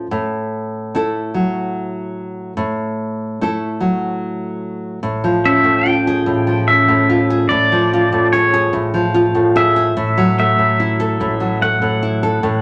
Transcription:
Already playing: C#4
0.11 A2
0.95 A3 E4 A4
1.34 F#3
2.57 A2
3.41 A3 E4 A4
3.80 F#3
5.03 A1 A2
5.24 F3
5.45 C#4 E5
5.64 A2
5.86 F4 G5
6.07 G#4
6.26 A1 A2
6.47 F3
6.68 C#4 E5
6.88 A2
7.10 F4
7.30 G#4
7.49 A1 A2 D5
7.72 F3
7.93 F4
8.12 A2
8.33 G#4 C#5
8.54 G#4
8.73 A1 A2
8.94 F3
9.14 F4
9.35 A2
9.56 G#4 E5
9.76 G#4
9.97 A1 A2
10.17 F#3
10.39 A3 E5
10.59 A2
10.80 E4
11.00 A4
11.20 A1 A2
11.40 F#3
11.62 A3 F#5
11.82 A2
12.03 E4
12.23 A4
12.43 A1 A2

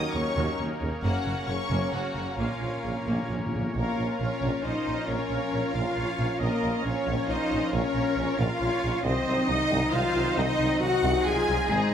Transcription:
Already playing: D#3 F#3 A#3 C#4 D#4 A#4 C#5 D#5 D#6
0.14 D#2 C#3 C#5 C#6
0.37 D#2 F#3
0.59 D#2 D#3
0.82 D#2 C#3
1.03 F#1 F#2 C#3 F#3 A#3 C#4 F#4 A#4 F#5
1.26 F#1 F#2 F#3
1.48 F#1 F#2 C#3 C#5 C#6
1.70 F#1 F#2 A#3
1.93 F#1 F#2 F#3 F#4 F#5
2.15 F#1 F#2 C#3
2.38 A#1 A#2 A#3 F4 F5
2.47 A#2
2.54 A#2
2.60 A#1 A#2 F3
2.69 A#2
2.77 A#2
2.83 A#1 A#2 C#3
2.92 A#2
3.00 A#2
3.07 A#1 A#2 A#3
3.16 A#2
3.23 A#2
3.29 A#1 A#2 F3
3.39 A#2
3.46 A#2
3.53 A#1 A#2 C#3
3.62 A#2
3.74 A#1 F3 A#3 C#4 F4 A#4 C#5 F5
3.98 A#1
4.19 A#1 C#4 A#4 C#5
4.42 A#1
4.64 A#1 D#4 C5 D#5
4.86 A#1
5.08 A#1 C#4 A#4 C#5
5.30 A#1
5.52 A#1
5.74 A#1 F4 F5
5.96 A#1 C#5
6.18 A#1
6.39 A#1 A#3 A#4 D#5
6.62 A#1
6.84 A#1 C#4 C#5
7.06 A#1
7.27 A#1 D#4 C5 D#5
7.50 A#1
7.72 A#1 C#4 A#4 C#5
7.95 A#1
8.16 A#1
8.38 A#1 F4 F5
8.60 A#1 C#5
8.82 A#1
9.04 C2 D#3 F#3 C4 D#4 C5 D#5
9.27 C2
9.48 C2 D#4 D#5
9.71 C2
9.92 C2 F4 C5 F5
10.15 C2
10.36 C2 D#4 D#5
10.59 C2
10.80 C2 D#4 F#4 F#5
11.03 C2
11.24 C2 F4 G#4 G#5
11.47 C2
11.69 G#1 D#3 G#3 C4 D#4 G#4

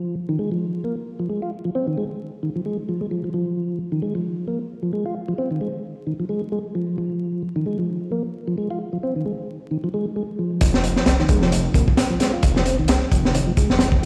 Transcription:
Already playing: F3
0.29 D#3
0.39 G#3
0.52 F3
0.84 A#3
1.19 F3
1.29 G#3
1.42 F4
1.65 F3
1.75 C4
1.87 D#3
1.98 G#3
2.43 D#3
2.56 F3
2.66 G#3
2.89 F3
3.01 G#3
3.11 F3
3.24 F3
3.34 F3
3.92 D#3
4.02 G#3
4.15 F3
4.48 A#3
4.83 F3
4.93 G#3
5.06 F4
5.28 F3
5.38 C4
5.51 D#3
5.61 G#3
6.07 D#3
6.20 F3
6.29 G#3
6.52 G#3
6.75 F3
6.98 F3
7.56 D#3
7.66 G#3
7.79 F3
8.12 A#3
8.48 F3
8.58 G#3
8.71 F4
8.93 F3
9.03 C4
9.16 D#3
9.26 G#3
9.71 D#3
9.84 F3
9.94 G#3
10.16 G#3
10.39 F3
10.61 F1 F3, kick, closed hi-hat
10.74 snare
10.84 closed hi-hat
10.96 snare
11.06 C2, snare, closed hi-hat
11.19 D#3, snare
11.29 F1 G#3, kick, closed hi-hat
11.42 F3, snare
11.52 closed hi-hat
11.74 D#1 A#3, kick, closed hi-hat
11.88 kick
11.97 snare, closed hi-hat
12.10 F3
12.20 G#3, snare, closed hi-hat
12.33 F4
12.43 F1, kick, closed hi-hat
12.56 F3, snare
12.66 C4, closed hi-hat
12.79 C2 D#3
12.88 C2 G#3, snare, closed hi-hat
13.11 F1, kick, closed hi-hat
13.25 snare
13.35 D#3, closed hi-hat
13.47 F3
13.57 G#3, kick, closed hi-hat
13.69 F1, snare
13.79 G#3, snare, closed hi-hat
13.92 kick

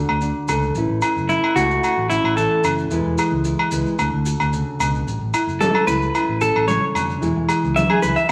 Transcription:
Already playing: D3 A3 D4 F#4 A4
0.09 D2, low agogo
0.21 D4, maracas
0.48 C#2 A3 A4, low agogo, maracas
0.62 maracas
0.75 A1 A3 C#4 E4 B4, muted nylon-string guitar stroke, maracas
0.90 A1
1.01 E4, low agogo, maracas
1.16 F#1, maracas
1.29 C#4 E4, maracas
1.44 low agogo
1.56 C#2 A3 E4 F#4, maracas
1.71 maracas
1.84 E4, low agogo, maracas
1.97 A1
2.10 C#4 E4, maracas
2.24 A1, low agogo
2.36 E3 A4, maracas
2.64 F#1 C#4, low agogo, maracas
2.78 maracas
2.90 E1 E3 G#3 E4 G#4 B4, maracas
3.05 E1
3.18 G#4, low agogo, maracas
3.32 C#2
3.45 E4, maracas
3.59 low agogo
3.71 C#2 G#3 B4, maracas
3.86 maracas
3.98 D2 D3, low agogo, maracas
4.13 D2
4.26 F#4, maracas
4.40 D2, low agogo, maracas
4.53 C#3, maracas
4.79 C#2 B2, low agogo, maracas
4.95 maracas
5.07 A1 A2, muted conga, maracas
5.21 A1
5.34 E4, low agogo, maracas
5.47 F#1, maracas
5.61 C#4 A4, high conga, maracas
5.75 low agogo
5.86 C#2 E4 B4, muted nylon-string guitar stroke, maracas
6.02 maracas
6.15 E4, muted conga, low agogo, maracas
6.29 A1
6.41 C#4 A4, muted conga, maracas
6.56 A1, low agogo
6.68 C#3 C#5, high conga, maracas
6.95 F1 D3, low agogo, maracas
7.10 maracas
7.21 E1 E3 G#3 E4 G#4, muted nylon-string guitar stroke, muted conga, maracas
7.36 E1
7.49 G#4, low agogo, maracas
7.64 C#2, maracas
7.76 E4 E5, high conga, maracas
7.90 G#4, low agogo
8.02 C#2 G#4 B4, muted conga, maracas
8.16 E5, maracas
8.28 D3

